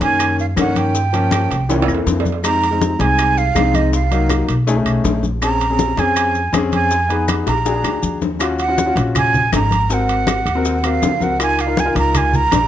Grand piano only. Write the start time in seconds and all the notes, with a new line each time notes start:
0.01 D#3 A#3 C#4
0.56 D#3 A#3 C#4
1.13 F3 A#3 C#4
1.69 E3 A#3 C#4
1.78 E3 A#3 C4
2.44 G#3 C4 D#4
2.71 G#3 C4 D#4
2.99 G#3 C4 D#4
3.55 G#3 C4 D#4
4.11 F#3 A#3 D#4
4.67 A3 C#4 D#4 G#4
4.76 A3 C#4 D#4
5.41 C4 C#4 G#4
5.70 C4 C#4 G#4
5.98 C4 C#4 G#4
6.53 C4 C#4 G#4
7.09 B3 D#4 G#4
7.65 D4 F#4 G#4
7.74 D4 F#4 G#4
8.39 C#4 F4 F#4
8.68 C#4 F4 F#4
8.86 C#4 F4 F#4
9.90 C4 F#4 A#4
10.55 C4 F#4 A#4
10.83 C4 F#4 A#4
11.20 C4 F#4 A#4
11.39 D#4 F4 A#4
11.66 D#4 F4 A#4
11.85 D#4 F4 A#4